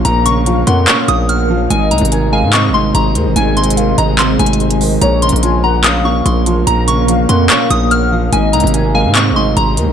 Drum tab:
HH |x-----x-----x-----x-----x-----x-----x-----------|x-----x-x-x-x-----------x-----------x-----x-----|x-----x-x-x-x-----x-----x-----x-x-x-x--x--o-----|x-----x-x-x-x-----------x-----------x-----x-----|
CP |------------------------x-----------------------|------------------------x-----------------------|------------------------x-----------------------|------------------------x-----------------------|

HH |x-----x-----x-----x-----x-----x-----x-----------|x-----x-x-x-x-----------x-----------x-----x-----|
CP |------------------------x-----------------------|------------------------x-----------------------|